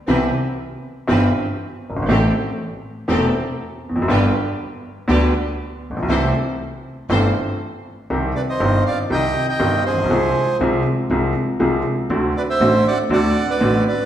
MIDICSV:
0, 0, Header, 1, 5, 480
1, 0, Start_track
1, 0, Key_signature, 0, "major"
1, 0, Tempo, 501253
1, 74, Time_signature, 4, 2, 24, 8
1, 7758, Key_signature, -3, "minor"
1, 13459, End_track
2, 0, Start_track
2, 0, Title_t, "Bandoneon"
2, 0, Program_c, 0, 23
2, 8003, Note_on_c, 0, 74, 70
2, 8012, Note_on_c, 0, 71, 56
2, 8057, Note_off_c, 0, 74, 0
2, 8063, Note_off_c, 0, 71, 0
2, 8132, Note_on_c, 0, 75, 74
2, 8143, Note_on_c, 0, 72, 61
2, 8462, Note_off_c, 0, 75, 0
2, 8468, Note_off_c, 0, 72, 0
2, 8486, Note_on_c, 0, 77, 79
2, 8501, Note_on_c, 0, 74, 60
2, 8593, Note_off_c, 0, 77, 0
2, 8605, Note_off_c, 0, 74, 0
2, 8729, Note_on_c, 0, 79, 87
2, 8749, Note_on_c, 0, 75, 68
2, 9061, Note_off_c, 0, 79, 0
2, 9071, Note_off_c, 0, 75, 0
2, 9088, Note_on_c, 0, 79, 82
2, 9104, Note_on_c, 0, 75, 62
2, 9420, Note_off_c, 0, 79, 0
2, 9428, Note_off_c, 0, 75, 0
2, 9440, Note_on_c, 0, 72, 64
2, 9456, Note_on_c, 0, 68, 51
2, 10121, Note_off_c, 0, 72, 0
2, 10129, Note_off_c, 0, 68, 0
2, 11848, Note_on_c, 0, 74, 75
2, 11854, Note_on_c, 0, 71, 57
2, 11898, Note_off_c, 0, 74, 0
2, 11902, Note_off_c, 0, 71, 0
2, 11970, Note_on_c, 0, 76, 84
2, 11972, Note_on_c, 0, 72, 64
2, 12296, Note_off_c, 0, 72, 0
2, 12329, Note_on_c, 0, 74, 65
2, 12330, Note_off_c, 0, 76, 0
2, 12332, Note_on_c, 0, 78, 83
2, 12433, Note_off_c, 0, 74, 0
2, 12435, Note_off_c, 0, 78, 0
2, 12568, Note_on_c, 0, 74, 69
2, 12577, Note_on_c, 0, 78, 88
2, 12894, Note_off_c, 0, 74, 0
2, 12931, Note_on_c, 0, 74, 68
2, 12932, Note_on_c, 0, 71, 57
2, 12933, Note_off_c, 0, 78, 0
2, 13255, Note_off_c, 0, 71, 0
2, 13255, Note_off_c, 0, 74, 0
2, 13292, Note_on_c, 0, 74, 63
2, 13300, Note_on_c, 0, 71, 49
2, 13459, Note_off_c, 0, 71, 0
2, 13459, Note_off_c, 0, 74, 0
2, 13459, End_track
3, 0, Start_track
3, 0, Title_t, "String section"
3, 0, Program_c, 1, 48
3, 72, Note_on_c, 1, 60, 61
3, 77, Note_on_c, 1, 64, 58
3, 78, Note_on_c, 1, 71, 69
3, 276, Note_off_c, 1, 60, 0
3, 278, Note_off_c, 1, 64, 0
3, 279, Note_off_c, 1, 71, 0
3, 1037, Note_on_c, 1, 60, 65
3, 1041, Note_on_c, 1, 64, 59
3, 1043, Note_on_c, 1, 71, 72
3, 1239, Note_off_c, 1, 60, 0
3, 1241, Note_off_c, 1, 64, 0
3, 1242, Note_off_c, 1, 71, 0
3, 2001, Note_on_c, 1, 60, 68
3, 2005, Note_on_c, 1, 69, 68
3, 2006, Note_on_c, 1, 67, 58
3, 2202, Note_off_c, 1, 60, 0
3, 2204, Note_off_c, 1, 69, 0
3, 2205, Note_off_c, 1, 67, 0
3, 2956, Note_on_c, 1, 60, 69
3, 2960, Note_on_c, 1, 67, 65
3, 2961, Note_on_c, 1, 69, 78
3, 3160, Note_off_c, 1, 60, 0
3, 3161, Note_off_c, 1, 67, 0
3, 3162, Note_off_c, 1, 69, 0
3, 3921, Note_on_c, 1, 62, 70
3, 3924, Note_on_c, 1, 67, 60
3, 3926, Note_on_c, 1, 71, 78
3, 4121, Note_off_c, 1, 62, 0
3, 4123, Note_off_c, 1, 67, 0
3, 4124, Note_off_c, 1, 71, 0
3, 4874, Note_on_c, 1, 62, 71
3, 4876, Note_on_c, 1, 67, 67
3, 4879, Note_on_c, 1, 71, 77
3, 5076, Note_off_c, 1, 62, 0
3, 5077, Note_off_c, 1, 67, 0
3, 5079, Note_off_c, 1, 71, 0
3, 5836, Note_on_c, 1, 64, 67
3, 5840, Note_on_c, 1, 69, 64
3, 5841, Note_on_c, 1, 72, 72
3, 6036, Note_off_c, 1, 64, 0
3, 6038, Note_off_c, 1, 69, 0
3, 6038, Note_off_c, 1, 72, 0
3, 6798, Note_on_c, 1, 64, 64
3, 6798, Note_on_c, 1, 69, 58
3, 6800, Note_on_c, 1, 72, 70
3, 6998, Note_off_c, 1, 64, 0
3, 6998, Note_off_c, 1, 69, 0
3, 6999, Note_off_c, 1, 72, 0
3, 13459, End_track
4, 0, Start_track
4, 0, Title_t, "Upright piano"
4, 0, Program_c, 2, 0
4, 74, Note_on_c, 2, 52, 62
4, 76, Note_on_c, 2, 60, 57
4, 77, Note_on_c, 2, 48, 75
4, 77, Note_on_c, 2, 59, 53
4, 78, Note_on_c, 2, 36, 69
4, 80, Note_on_c, 2, 67, 70
4, 277, Note_off_c, 2, 52, 0
4, 278, Note_off_c, 2, 48, 0
4, 278, Note_off_c, 2, 59, 0
4, 278, Note_off_c, 2, 60, 0
4, 279, Note_off_c, 2, 36, 0
4, 280, Note_off_c, 2, 67, 0
4, 1029, Note_on_c, 2, 52, 59
4, 1029, Note_on_c, 2, 59, 51
4, 1030, Note_on_c, 2, 31, 70
4, 1032, Note_on_c, 2, 43, 72
4, 1033, Note_on_c, 2, 60, 54
4, 1033, Note_on_c, 2, 67, 60
4, 1235, Note_off_c, 2, 31, 0
4, 1235, Note_off_c, 2, 52, 0
4, 1235, Note_off_c, 2, 59, 0
4, 1237, Note_off_c, 2, 43, 0
4, 1237, Note_off_c, 2, 60, 0
4, 1237, Note_off_c, 2, 67, 0
4, 1816, Note_on_c, 2, 30, 45
4, 1878, Note_off_c, 2, 30, 0
4, 1882, Note_on_c, 2, 31, 60
4, 1937, Note_on_c, 2, 32, 69
4, 1941, Note_off_c, 2, 31, 0
4, 1995, Note_on_c, 2, 52, 63
4, 1995, Note_on_c, 2, 57, 58
4, 1998, Note_on_c, 2, 45, 80
4, 1999, Note_off_c, 2, 32, 0
4, 1999, Note_on_c, 2, 33, 77
4, 1999, Note_on_c, 2, 60, 56
4, 2001, Note_on_c, 2, 67, 68
4, 2199, Note_off_c, 2, 52, 0
4, 2200, Note_off_c, 2, 57, 0
4, 2201, Note_off_c, 2, 33, 0
4, 2201, Note_off_c, 2, 45, 0
4, 2201, Note_off_c, 2, 60, 0
4, 2202, Note_off_c, 2, 67, 0
4, 2948, Note_on_c, 2, 52, 63
4, 2949, Note_on_c, 2, 60, 58
4, 2950, Note_on_c, 2, 40, 68
4, 2952, Note_on_c, 2, 57, 54
4, 2953, Note_on_c, 2, 28, 77
4, 2956, Note_on_c, 2, 67, 69
4, 3155, Note_off_c, 2, 52, 0
4, 3156, Note_off_c, 2, 60, 0
4, 3157, Note_off_c, 2, 40, 0
4, 3158, Note_off_c, 2, 28, 0
4, 3158, Note_off_c, 2, 57, 0
4, 3159, Note_off_c, 2, 67, 0
4, 3726, Note_on_c, 2, 40, 44
4, 3789, Note_on_c, 2, 41, 62
4, 3793, Note_off_c, 2, 40, 0
4, 3849, Note_on_c, 2, 42, 71
4, 3855, Note_off_c, 2, 41, 0
4, 3907, Note_on_c, 2, 50, 65
4, 3909, Note_on_c, 2, 55, 59
4, 3910, Note_on_c, 2, 31, 77
4, 3910, Note_on_c, 2, 59, 59
4, 3911, Note_on_c, 2, 43, 78
4, 3912, Note_on_c, 2, 67, 72
4, 3914, Note_off_c, 2, 42, 0
4, 4114, Note_off_c, 2, 50, 0
4, 4115, Note_off_c, 2, 55, 0
4, 4116, Note_off_c, 2, 31, 0
4, 4116, Note_off_c, 2, 43, 0
4, 4116, Note_off_c, 2, 59, 0
4, 4117, Note_off_c, 2, 67, 0
4, 4862, Note_on_c, 2, 38, 74
4, 4863, Note_on_c, 2, 50, 77
4, 4863, Note_on_c, 2, 55, 58
4, 4863, Note_on_c, 2, 67, 68
4, 4867, Note_on_c, 2, 59, 62
4, 5070, Note_off_c, 2, 38, 0
4, 5071, Note_off_c, 2, 50, 0
4, 5071, Note_off_c, 2, 55, 0
4, 5071, Note_off_c, 2, 67, 0
4, 5073, Note_off_c, 2, 59, 0
4, 5658, Note_on_c, 2, 33, 46
4, 5715, Note_off_c, 2, 33, 0
4, 5716, Note_on_c, 2, 34, 57
4, 5772, Note_on_c, 2, 35, 69
4, 5775, Note_off_c, 2, 34, 0
4, 5832, Note_off_c, 2, 35, 0
4, 5834, Note_on_c, 2, 52, 64
4, 5836, Note_on_c, 2, 57, 60
4, 5838, Note_on_c, 2, 60, 61
4, 5839, Note_on_c, 2, 67, 72
4, 5840, Note_on_c, 2, 48, 81
4, 5841, Note_on_c, 2, 36, 75
4, 6035, Note_off_c, 2, 52, 0
4, 6036, Note_off_c, 2, 57, 0
4, 6037, Note_off_c, 2, 60, 0
4, 6037, Note_off_c, 2, 67, 0
4, 6038, Note_off_c, 2, 36, 0
4, 6038, Note_off_c, 2, 48, 0
4, 6793, Note_on_c, 2, 52, 60
4, 6796, Note_on_c, 2, 31, 69
4, 6798, Note_on_c, 2, 43, 70
4, 6798, Note_on_c, 2, 57, 52
4, 6798, Note_on_c, 2, 60, 55
4, 6801, Note_on_c, 2, 67, 66
4, 6996, Note_off_c, 2, 52, 0
4, 6997, Note_off_c, 2, 31, 0
4, 6998, Note_off_c, 2, 43, 0
4, 6998, Note_off_c, 2, 57, 0
4, 6998, Note_off_c, 2, 60, 0
4, 6999, Note_off_c, 2, 67, 0
4, 7758, Note_on_c, 2, 60, 51
4, 7759, Note_on_c, 2, 36, 67
4, 7759, Note_on_c, 2, 51, 58
4, 7759, Note_on_c, 2, 55, 55
4, 7760, Note_on_c, 2, 48, 69
4, 7764, Note_on_c, 2, 67, 64
4, 7961, Note_off_c, 2, 36, 0
4, 7961, Note_off_c, 2, 51, 0
4, 7961, Note_off_c, 2, 55, 0
4, 7961, Note_off_c, 2, 60, 0
4, 7962, Note_off_c, 2, 48, 0
4, 7964, Note_off_c, 2, 67, 0
4, 8236, Note_on_c, 2, 51, 59
4, 8239, Note_on_c, 2, 31, 72
4, 8239, Note_on_c, 2, 55, 53
4, 8240, Note_on_c, 2, 43, 71
4, 8241, Note_on_c, 2, 60, 51
4, 8243, Note_on_c, 2, 67, 66
4, 8440, Note_off_c, 2, 51, 0
4, 8441, Note_off_c, 2, 31, 0
4, 8442, Note_off_c, 2, 43, 0
4, 8442, Note_off_c, 2, 55, 0
4, 8442, Note_off_c, 2, 60, 0
4, 8443, Note_off_c, 2, 67, 0
4, 8712, Note_on_c, 2, 51, 57
4, 8715, Note_on_c, 2, 55, 50
4, 8717, Note_on_c, 2, 48, 67
4, 8718, Note_on_c, 2, 36, 65
4, 8719, Note_on_c, 2, 60, 52
4, 8719, Note_on_c, 2, 67, 63
4, 8918, Note_off_c, 2, 51, 0
4, 8920, Note_off_c, 2, 55, 0
4, 8921, Note_off_c, 2, 36, 0
4, 8921, Note_off_c, 2, 48, 0
4, 8922, Note_off_c, 2, 60, 0
4, 8922, Note_off_c, 2, 67, 0
4, 9187, Note_on_c, 2, 51, 61
4, 9190, Note_on_c, 2, 31, 70
4, 9190, Note_on_c, 2, 55, 52
4, 9190, Note_on_c, 2, 60, 58
4, 9191, Note_on_c, 2, 43, 73
4, 9192, Note_on_c, 2, 67, 66
4, 9396, Note_off_c, 2, 51, 0
4, 9397, Note_off_c, 2, 31, 0
4, 9397, Note_off_c, 2, 55, 0
4, 9397, Note_off_c, 2, 60, 0
4, 9398, Note_off_c, 2, 43, 0
4, 9398, Note_off_c, 2, 67, 0
4, 9496, Note_on_c, 2, 33, 44
4, 9558, Note_off_c, 2, 33, 0
4, 9563, Note_on_c, 2, 34, 52
4, 9614, Note_on_c, 2, 35, 66
4, 9622, Note_off_c, 2, 34, 0
4, 9675, Note_on_c, 2, 53, 58
4, 9676, Note_on_c, 2, 56, 52
4, 9677, Note_on_c, 2, 36, 75
4, 9678, Note_off_c, 2, 35, 0
4, 9679, Note_on_c, 2, 48, 71
4, 9680, Note_on_c, 2, 60, 54
4, 9682, Note_on_c, 2, 68, 66
4, 9879, Note_off_c, 2, 53, 0
4, 9880, Note_off_c, 2, 36, 0
4, 9880, Note_off_c, 2, 56, 0
4, 9881, Note_off_c, 2, 48, 0
4, 9882, Note_off_c, 2, 60, 0
4, 9883, Note_off_c, 2, 68, 0
4, 10155, Note_on_c, 2, 53, 64
4, 10156, Note_on_c, 2, 48, 72
4, 10156, Note_on_c, 2, 56, 56
4, 10159, Note_on_c, 2, 36, 76
4, 10160, Note_on_c, 2, 68, 69
4, 10162, Note_on_c, 2, 60, 55
4, 10358, Note_off_c, 2, 48, 0
4, 10358, Note_off_c, 2, 53, 0
4, 10358, Note_off_c, 2, 56, 0
4, 10360, Note_off_c, 2, 36, 0
4, 10360, Note_off_c, 2, 68, 0
4, 10361, Note_off_c, 2, 60, 0
4, 10633, Note_on_c, 2, 53, 57
4, 10636, Note_on_c, 2, 36, 70
4, 10638, Note_on_c, 2, 48, 65
4, 10639, Note_on_c, 2, 56, 51
4, 10641, Note_on_c, 2, 60, 53
4, 10642, Note_on_c, 2, 68, 63
4, 10836, Note_off_c, 2, 53, 0
4, 10837, Note_off_c, 2, 36, 0
4, 10838, Note_off_c, 2, 48, 0
4, 10839, Note_off_c, 2, 56, 0
4, 10840, Note_off_c, 2, 60, 0
4, 10840, Note_off_c, 2, 68, 0
4, 11103, Note_on_c, 2, 53, 65
4, 11107, Note_on_c, 2, 60, 53
4, 11108, Note_on_c, 2, 36, 74
4, 11108, Note_on_c, 2, 56, 55
4, 11109, Note_on_c, 2, 48, 72
4, 11112, Note_on_c, 2, 68, 66
4, 11310, Note_off_c, 2, 53, 0
4, 11311, Note_off_c, 2, 60, 0
4, 11312, Note_off_c, 2, 36, 0
4, 11312, Note_off_c, 2, 48, 0
4, 11312, Note_off_c, 2, 56, 0
4, 11314, Note_off_c, 2, 68, 0
4, 11588, Note_on_c, 2, 50, 70
4, 11590, Note_on_c, 2, 38, 67
4, 11591, Note_on_c, 2, 57, 54
4, 11594, Note_on_c, 2, 60, 54
4, 11596, Note_on_c, 2, 66, 67
4, 11792, Note_off_c, 2, 38, 0
4, 11792, Note_off_c, 2, 57, 0
4, 11793, Note_off_c, 2, 50, 0
4, 11794, Note_off_c, 2, 60, 0
4, 11795, Note_off_c, 2, 66, 0
4, 12071, Note_on_c, 2, 33, 74
4, 12071, Note_on_c, 2, 50, 62
4, 12073, Note_on_c, 2, 45, 78
4, 12074, Note_on_c, 2, 60, 56
4, 12075, Note_on_c, 2, 57, 58
4, 12075, Note_on_c, 2, 66, 71
4, 12271, Note_off_c, 2, 50, 0
4, 12272, Note_off_c, 2, 33, 0
4, 12272, Note_off_c, 2, 45, 0
4, 12273, Note_off_c, 2, 57, 0
4, 12273, Note_off_c, 2, 60, 0
4, 12273, Note_off_c, 2, 66, 0
4, 12549, Note_on_c, 2, 38, 67
4, 12551, Note_on_c, 2, 50, 73
4, 12552, Note_on_c, 2, 57, 54
4, 12556, Note_on_c, 2, 60, 54
4, 12556, Note_on_c, 2, 66, 67
4, 12750, Note_off_c, 2, 38, 0
4, 12752, Note_off_c, 2, 57, 0
4, 12753, Note_off_c, 2, 50, 0
4, 12754, Note_off_c, 2, 60, 0
4, 12754, Note_off_c, 2, 66, 0
4, 13026, Note_on_c, 2, 50, 61
4, 13028, Note_on_c, 2, 33, 76
4, 13030, Note_on_c, 2, 57, 56
4, 13032, Note_on_c, 2, 45, 73
4, 13034, Note_on_c, 2, 60, 54
4, 13034, Note_on_c, 2, 66, 70
4, 13229, Note_off_c, 2, 50, 0
4, 13230, Note_off_c, 2, 33, 0
4, 13231, Note_off_c, 2, 57, 0
4, 13232, Note_off_c, 2, 45, 0
4, 13233, Note_off_c, 2, 60, 0
4, 13233, Note_off_c, 2, 66, 0
4, 13459, End_track
5, 0, Start_track
5, 0, Title_t, "Upright bass"
5, 0, Program_c, 3, 32
5, 74, Note_on_c, 3, 36, 81
5, 277, Note_off_c, 3, 36, 0
5, 1041, Note_on_c, 3, 31, 86
5, 1241, Note_off_c, 3, 31, 0
5, 1822, Note_on_c, 3, 30, 45
5, 1876, Note_off_c, 3, 30, 0
5, 1881, Note_on_c, 3, 31, 53
5, 1935, Note_off_c, 3, 31, 0
5, 1940, Note_on_c, 3, 32, 63
5, 1992, Note_off_c, 3, 32, 0
5, 1998, Note_on_c, 3, 33, 82
5, 2201, Note_off_c, 3, 33, 0
5, 2957, Note_on_c, 3, 28, 87
5, 3160, Note_off_c, 3, 28, 0
5, 3743, Note_on_c, 3, 28, 48
5, 3792, Note_off_c, 3, 28, 0
5, 3798, Note_on_c, 3, 29, 56
5, 3855, Note_off_c, 3, 29, 0
5, 3860, Note_on_c, 3, 30, 65
5, 3916, Note_off_c, 3, 30, 0
5, 3922, Note_on_c, 3, 31, 91
5, 4122, Note_off_c, 3, 31, 0
5, 4872, Note_on_c, 3, 38, 87
5, 5075, Note_off_c, 3, 38, 0
5, 5649, Note_on_c, 3, 33, 47
5, 5706, Note_off_c, 3, 33, 0
5, 5712, Note_on_c, 3, 34, 53
5, 5765, Note_off_c, 3, 34, 0
5, 5771, Note_on_c, 3, 35, 64
5, 5822, Note_off_c, 3, 35, 0
5, 5827, Note_on_c, 3, 36, 90
5, 6031, Note_off_c, 3, 36, 0
5, 6789, Note_on_c, 3, 31, 79
5, 6993, Note_off_c, 3, 31, 0
5, 7757, Note_on_c, 3, 36, 76
5, 7960, Note_off_c, 3, 36, 0
5, 8237, Note_on_c, 3, 31, 83
5, 8441, Note_off_c, 3, 31, 0
5, 8716, Note_on_c, 3, 36, 81
5, 8920, Note_off_c, 3, 36, 0
5, 9190, Note_on_c, 3, 31, 78
5, 9397, Note_off_c, 3, 31, 0
5, 9496, Note_on_c, 3, 33, 42
5, 9549, Note_off_c, 3, 33, 0
5, 9555, Note_on_c, 3, 34, 49
5, 9607, Note_off_c, 3, 34, 0
5, 9613, Note_on_c, 3, 35, 60
5, 9658, Note_off_c, 3, 35, 0
5, 9664, Note_on_c, 3, 36, 82
5, 9873, Note_off_c, 3, 36, 0
5, 10145, Note_on_c, 3, 36, 79
5, 10353, Note_off_c, 3, 36, 0
5, 10626, Note_on_c, 3, 36, 79
5, 10832, Note_off_c, 3, 36, 0
5, 11106, Note_on_c, 3, 36, 80
5, 11311, Note_off_c, 3, 36, 0
5, 11584, Note_on_c, 3, 38, 84
5, 11789, Note_off_c, 3, 38, 0
5, 12066, Note_on_c, 3, 33, 85
5, 12269, Note_off_c, 3, 33, 0
5, 12539, Note_on_c, 3, 38, 82
5, 12745, Note_off_c, 3, 38, 0
5, 13032, Note_on_c, 3, 33, 87
5, 13232, Note_off_c, 3, 33, 0
5, 13459, End_track
0, 0, End_of_file